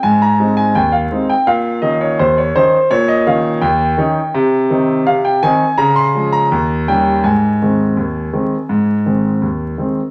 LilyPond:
<<
  \new Staff \with { instrumentName = "Grand piano" } { \time 2/4 \key aes \major \tempo 4 = 83 aes''16 bes''8 aes''16 g''16 f''8 g''16 | f''8 ees''16 des''16 c''16 des''16 c''8 | des''16 ees''16 f''8 g''4 | r4 f''16 g''16 aes''8 |
bes''16 c'''8 bes''8. g''8 | aes''2~ | aes''4 r4 | }
  \new Staff \with { instrumentName = "Grand piano" } { \clef bass \time 2/4 \key aes \major aes,8 <aes c' ees'>8 ees,8 <aes c' ees'>8 | bes,8 <ees des' ees'>8 ees,8 <ees des' ees'>8 | bes,8 <ees des' ees'>8 ees,8 <ees des' ees'>8 | c8 <ees c' ees'>8 c8 <ees c' ees'>8 |
des8 <f aes des'>8 ees,8 <ees g des'>8 | aes,8 <ees aes c'>8 ees,8 <ees aes c'>8 | aes,8 <ees aes c'>8 ees,8 <ees aes c'>8 | }
>>